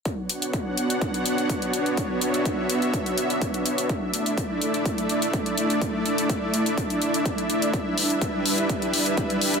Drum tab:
HH |x-xxx-xxxxxxxxxx|x-xxx-xxxxxxxxxx|x-xxx-xxxxxxxxxx|x-xxx-xxxxxxxxxx|
BD |o---o---o---o---|o---o---o---o---|o---o---o---o---|o---o---o---o---|

HH |x-oxx-oxxxoxxxox|
BD |o---o---o---o---|